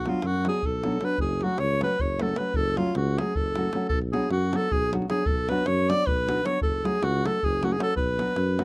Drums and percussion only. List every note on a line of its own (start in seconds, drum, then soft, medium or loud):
0.06 davul high medium
0.14 davul high soft
0.22 davul high medium
0.35 davul high soft
0.45 davul high medium
0.54 davul high soft
0.63 davul low medium
0.84 davul high medium
0.92 davul high soft
1.01 davul high medium
1.18 davul low medium
1.29 davul high soft
1.41 davul high soft
1.49 davul high soft
1.58 davul high medium
1.70 davul high soft
1.81 davul high medium
1.91 davul high soft
1.99 davul low medium
2.19 davul high medium
2.29 davul high soft
2.36 davul high medium
2.54 davul low medium
2.77 davul high medium
2.86 davul high soft
2.95 davul high medium
3.07 davul high soft
3.18 davul high medium
3.35 davul low medium
3.46 davul high soft
3.56 davul high medium
3.65 davul high soft
3.73 davul high medium
3.82 davul high soft
3.90 davul low medium
4.02 davul high soft
4.13 davul high soft
4.22 davul high soft
4.30 davul high medium
4.42 davul high soft
4.53 davul high medium
4.62 davul high soft
4.71 davul low medium
4.93 davul high medium
5.02 davul high soft
5.10 davul high medium
5.26 davul low loud
5.38 davul high soft
5.49 davul high medium
5.58 davul high soft
5.66 davul high medium
5.79 davul high soft
5.90 davul high medium
5.99 davul high soft
6.07 davul low medium
6.29 davul high medium
6.38 davul high soft
6.46 davul high medium
6.62 davul low loud
6.74 davul high soft
6.85 davul high medium
6.95 davul high soft
7.03 davul high medium
7.15 davul high soft
7.26 davul high medium
7.43 davul low medium
7.63 davul high medium
7.72 davul high soft
7.80 davul high medium
7.97 davul low medium
8.19 davul high medium
8.28 davul high soft
8.36 davul high medium
8.59 davul high medium